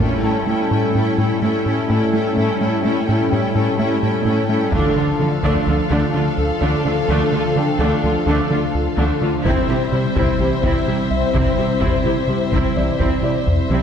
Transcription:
0.00 A2 G3 A3 C#4 E4 A4 G5, taiko
0.23 A3 C#4 E4 A4 G5 A5
0.47 A2 A3 C#4 E4 A4 G5
0.71 A2 A3 C#4 E4 A4 G5
0.94 A2 C#4 E4 A4 G5
1.18 A2 A3 C#4 E4 A4 G5
1.41 A2 A3 C#4 E4 A4 G5
1.66 A2 C#4 E4 A4 G5
1.89 A2 A3 C#4 E4 A4 G5
2.13 A3 C#4 E4 A4 G5
2.36 A2 A3 C#4 E4 A4 G5
2.60 A3 C#4 E4 A4 G5
2.83 A2 A3 C#4 E4 A4 G5
3.05 A2 A3 C#4 E4 A4 G5
3.30 A2 C#4 E4 G4 A4 G5
3.54 A2 A3 C#4 E4 A4 G5
3.77 A2 A3 C#4 E4 A4 G5
4.01 A2 C#4 E4 A4 G5
4.24 A2 A3 C#4 E4 A4 G5
4.48 A3 C#4 E4 A4 G5
4.72 D2 D3 F3 A3 D4 F4 A4 F5, taiko
4.96 D3 A3 D4 F4
5.19 D3 A3 D4
5.43 D2 D3 A3 D4 E6, taiko
5.67 D2 D3 F3 D4 F4
5.90 D2 D3 A3 D4
6.14 D3 A3 D4 F4
6.38 D2
6.61 D2 D3 A3 D4
6.85 D3 A3 D4 F4
7.08 D2 D3 A3 D4
7.32 D3 A3 D4 F4
7.56 D3 A3 D4 G5
7.79 D2 D3 A3 D4
8.03 D2 D3 F3 D4 F4
8.26 D2 D3 A3 D4
8.50 D3 A3 D4 F4
8.75 D2
8.97 D2 D3 A3 D4
9.22 D3 A3 D4 F4
9.44 C2 C3 G3 C4 E4 C5 E5, taiko
9.69 C3 G3 E4 G4
9.92 C3 G3 E4
10.16 C2 C3 C4 E4, taiko
10.39 C2 C3 E3 E4 G4
10.64 C2 C3 C4 E4, taiko
10.87 C3 G3 E4 G4
11.11 C2 E5
11.34 C2 C3 C4 E4, taiko
11.58 C3 G3 E4 G4
11.81 C2 C3 C4 E4, taiko
12.05 C3 G3 E4 G4
12.27 C3 G3 E4
12.52 C2 C3 C4 E4, taiko
12.76 C2 C3 E3 E4 G4 D5
12.99 C2 C3 C4 E4, taiko
13.23 C3 G3 E4 G4 D5
13.46 C2, taiko low-mid
13.70 C2 C3 C4 E4, taiko high

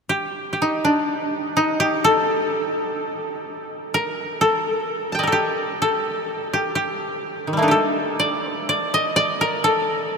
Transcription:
0.09 G4
0.53 G4
0.62 D#4
0.85 D4
1.57 D#4
1.80 G4
2.04 A4
3.94 A#4
4.41 A4
5.12 G5 A5
5.19 D5 D#5
5.23 A#4
5.27 A4
5.32 G4
5.82 A4
6.53 G4
6.75 G4
7.47 D#3
7.53 G3
7.57 A3 A#3
7.62 D4 D#4
7.68 G4 A4
8.20 D5
8.51 A#4
8.69 D5
8.94 D#5
9.16 D5
9.41 A#4
9.64 A4

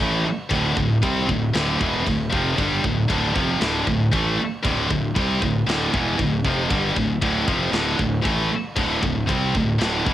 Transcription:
Already playing: A2 E3 A3
0.00 A1 A2 E3 A3
0.24 muted fingered electric bass stroke, muted distorted electric guitar stroke
0.50 D1 D2 A2 D3, kick, crash
0.76 D1 D2 A2, kick
1.02 C2 C3 G3 C4, kick, crash
1.27 D1 D2 A2, kick
1.54 D1 D2 A2 D3, snare, crash
1.79 E1 E2 B2 E3, kick
2.05 D1 D2 A2, kick, crash
2.30 F1 F2 C3 F3, kick
2.57 G1 G2 D3 G3, kick, crash
2.84 D1 D2 A2, kick
3.08 D1 D2 A2 D3, kick, crash
3.34 F1 F2 C3 F3, kick
3.60 D1 D2 A2 D3, snare, crash
3.86 D1 D2 A2, kick
4.12 A1 A2 E3 A3, kick, crash
4.38 muted distorted electric guitar stroke, muted fingered electric bass stroke
4.63 D1 D2 A2 D3, kick, crash
4.89 D1 D2 A2, kick
5.16 C2 C3 G3 C4, kick, crash
5.42 D1 D2 A2, kick
5.67 D1 D2 A2 D3, snare, crash
5.92 E1 E2 B2 E3, kick
6.19 D1 D2 A2, kick, crash
6.45 F1 F2 C3 F3, kick
6.70 G1 G2 D3 G3, kick, crash
6.96 D1 D2 A2, kick
7.21 D1 D2 A2 D3, kick, crash
7.46 F1 F2 C3 F3, kick
7.71 D1 D2 A2 D3, snare, crash
7.98 D1 D2 A2, kick
8.22 A1 A2 E3 A3, kick, crash
8.50 muted distorted electric guitar stroke, muted fingered electric bass stroke
8.76 D1 D2 A2 D3, kick, crash
9.02 D1 D2 A2, kick
9.27 C2 C3 G3 C4, kick, crash
9.54 D1 D2 A2, kick
9.78 D1 D2 A2 D3, snare, crash
10.05 E1 E2 B2 E3, kick

